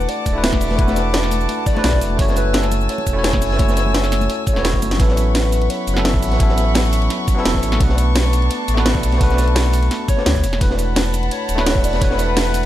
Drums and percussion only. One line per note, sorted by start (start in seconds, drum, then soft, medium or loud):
0.00 cabasa soft
0.09 closed hi-hat medium
0.26 kick medium
0.26 closed hi-hat medium
0.26 muted conga medium
0.26 cabasa medium
0.44 snare loud
0.44 closed hi-hat medium
0.53 kick loud
0.53 snare soft
0.53 muted conga medium
0.61 closed hi-hat medium
0.61 open hi-hat medium
0.61 cabasa medium
0.70 snare soft
0.70 high conga medium
0.78 kick loud
0.78 closed hi-hat loud
0.78 closed hi-hat medium
0.88 snare medium
0.88 muted conga medium
0.88 high conga medium
0.88 cabasa soft
0.96 snare soft
0.96 closed hi-hat medium
0.96 cabasa medium
1.14 snare loud
1.14 closed hi-hat medium
1.14 muted conga medium
1.23 snare soft
1.23 closed hi-hat soft
1.23 cabasa soft
1.31 closed hi-hat medium
1.31 open hi-hat medium
1.31 high conga medium
1.31 cabasa medium
1.41 closed hi-hat soft
1.41 cabasa soft
1.49 closed hi-hat medium
1.49 muted conga soft
1.66 kick loud
1.66 closed hi-hat medium
1.66 cabasa medium
1.75 snare soft
1.75 muted conga medium
1.84 snare loud
1.84 closed hi-hat medium
1.84 closed hi-hat loud
1.93 kick medium
1.93 snare soft
2.02 closed hi-hat medium
2.02 cabasa medium
2.10 muted conga soft
2.19 kick loud
2.19 closed hi-hat loud
2.28 snare medium
2.28 high conga medium
2.28 cabasa soft
2.36 closed hi-hat medium
2.36 muted conga medium
2.36 cabasa medium
2.45 high conga medium
2.54 snare loud
2.54 closed hi-hat medium
2.54 closed hi-hat loud
2.63 snare soft
2.63 cabasa soft
2.72 closed hi-hat medium
2.72 muted conga soft
2.72 high conga medium
2.72 cabasa medium
2.81 cabasa soft
2.89 closed hi-hat loud
2.89 closed hi-hat medium
2.98 muted conga medium
3.06 kick medium
3.06 closed hi-hat medium
3.06 cabasa medium
3.24 snare loud
3.24 closed hi-hat medium
3.33 kick loud
3.33 snare soft
3.33 muted conga medium
3.41 closed hi-hat medium
3.41 open hi-hat medium
3.41 cabasa medium
3.51 snare soft
3.51 high conga medium
3.59 kick loud
3.59 closed hi-hat medium
3.59 closed hi-hat loud
3.59 muted conga medium
3.68 snare soft
3.68 high conga medium
3.68 cabasa soft
3.77 snare soft
3.77 closed hi-hat medium
3.77 cabasa medium
3.86 high conga medium
3.94 snare loud
3.94 closed hi-hat loud
3.94 closed hi-hat medium
3.94 muted conga medium
4.04 snare soft
4.04 closed hi-hat soft
4.04 cabasa soft
4.12 snare medium
4.12 closed hi-hat medium
4.12 open hi-hat medium
4.12 high conga medium
4.12 cabasa medium
4.21 closed hi-hat soft
4.21 muted conga medium
4.21 cabasa soft
4.30 closed hi-hat loud
4.30 closed hi-hat medium
4.46 kick loud
4.46 closed hi-hat medium
4.46 cabasa medium
4.56 snare soft
4.56 muted conga soft
4.64 snare loud
4.64 closed hi-hat medium
4.64 closed hi-hat loud
4.73 kick medium
4.73 snare soft
4.82 closed hi-hat medium
4.82 muted conga medium
4.82 cabasa medium
4.91 snare medium
5.00 kick loud
5.00 closed hi-hat loud
5.00 closed hi-hat medium
5.00 ride bell medium
5.08 snare medium
5.17 closed hi-hat medium
5.17 ride bell medium
5.17 cabasa medium
5.35 snare loud
5.35 closed hi-hat loud
5.35 ride bell medium
5.44 cabasa soft
5.52 closed hi-hat medium
5.52 ride bell medium
5.52 cabasa medium
5.62 closed hi-hat soft
5.70 closed hi-hat medium
5.70 ride bell medium
5.87 closed hi-hat medium
5.87 ride bell medium
5.87 cabasa medium
5.97 snare medium
6.05 snare loud
6.05 closed hi-hat loud
6.05 closed hi-hat medium
6.05 ride bell medium
6.14 kick loud
6.22 closed hi-hat medium
6.22 open hi-hat medium
6.22 ride bell medium
6.22 cabasa medium
6.31 snare soft
6.31 closed hi-hat soft
6.40 kick loud
6.40 closed hi-hat loud
6.40 ride bell medium
6.49 snare medium
6.57 snare soft
6.57 closed hi-hat medium
6.57 ride bell soft
6.57 cabasa medium
6.75 snare loud
6.75 closed hi-hat medium
6.75 closed hi-hat loud
6.75 ride bell medium
6.84 closed hi-hat soft
6.84 cabasa soft
6.93 closed hi-hat medium
6.93 open hi-hat medium
6.93 ride bell medium
6.93 cabasa medium
7.02 closed hi-hat soft
7.10 snare soft
7.10 closed hi-hat medium
7.10 ride bell medium
7.28 kick loud
7.28 closed hi-hat medium
7.28 ride bell medium
7.28 cabasa medium
7.37 snare soft
7.45 snare loud
7.45 closed hi-hat medium
7.45 closed hi-hat loud
7.45 ride bell medium
7.54 kick medium
7.54 snare soft
7.63 closed hi-hat medium
7.63 ride bell medium
7.63 cabasa medium
7.72 snare medium
7.72 closed hi-hat soft
7.80 kick loud
7.80 closed hi-hat medium
7.80 ride bell medium
7.89 snare medium
7.98 closed hi-hat medium
7.98 ride bell medium
7.98 cabasa medium
8.15 snare loud
8.15 closed hi-hat medium
8.15 closed hi-hat loud
8.15 ride bell medium
8.25 cabasa soft
8.33 closed hi-hat medium
8.33 ride bell medium
8.33 cabasa medium
8.42 closed hi-hat soft
8.50 closed hi-hat medium
8.50 ride bell medium
8.68 closed hi-hat medium
8.68 ride bell medium
8.68 cabasa medium
8.77 snare medium
8.86 snare loud
8.86 closed hi-hat medium
8.86 closed hi-hat loud
8.86 ride bell medium
8.95 kick loud
9.03 closed hi-hat medium
9.03 open hi-hat medium
9.03 ride bell medium
9.03 cabasa medium
9.12 snare soft
9.12 closed hi-hat soft
9.21 kick loud
9.21 closed hi-hat loud
9.21 closed hi-hat medium
9.21 ride bell medium
9.30 snare medium
9.30 cabasa soft
9.38 snare soft
9.38 closed hi-hat medium
9.38 ride bell medium
9.38 cabasa medium
9.48 closed hi-hat soft
9.56 snare loud
9.56 closed hi-hat loud
9.56 closed hi-hat medium
9.56 ride bell medium
9.64 closed hi-hat soft
9.64 cabasa soft
9.73 closed hi-hat medium
9.73 open hi-hat medium
9.73 ride bell medium
9.73 cabasa medium
9.82 closed hi-hat soft
9.91 snare soft
9.91 closed hi-hat medium
9.91 ride bell medium
10.08 kick loud
10.08 closed hi-hat medium
10.08 ride bell medium
10.08 cabasa medium
10.18 snare soft
10.26 snare loud
10.26 closed hi-hat medium
10.26 ride bell medium
10.35 kick medium
10.35 snare soft
10.35 cabasa soft
10.44 closed hi-hat medium
10.44 ride bell medium
10.44 cabasa medium
10.53 snare soft
10.53 closed hi-hat soft
10.61 kick loud
10.61 closed hi-hat medium
10.61 ride bell medium
10.70 snare medium
10.78 closed hi-hat medium
10.78 ride bell medium
10.78 cabasa medium
10.96 snare loud
10.96 closed hi-hat medium
10.96 ride bell medium
11.05 cabasa soft
11.14 closed hi-hat medium
11.14 ride bell medium
11.14 cabasa medium
11.23 closed hi-hat soft
11.31 closed hi-hat medium
11.31 ride bell medium
11.49 closed hi-hat medium
11.49 ride bell medium
11.49 cabasa medium
11.58 snare medium
11.66 snare loud
11.66 closed hi-hat medium
11.66 ride bell medium
11.75 kick loud
11.84 closed hi-hat medium
11.84 open hi-hat medium
11.84 ride bell medium
11.84 cabasa medium
11.93 snare soft
11.93 closed hi-hat soft
12.01 kick loud
12.01 closed hi-hat loud
12.01 closed hi-hat medium
12.01 ride bell medium
12.11 snare medium
12.19 snare soft
12.19 closed hi-hat medium
12.19 ride bell medium
12.19 cabasa medium
12.37 snare loud
12.37 closed hi-hat medium
12.37 ride bell medium
12.45 closed hi-hat soft
12.45 cabasa soft
12.54 closed hi-hat medium
12.54 open hi-hat medium
12.54 ride bell medium
12.54 cabasa medium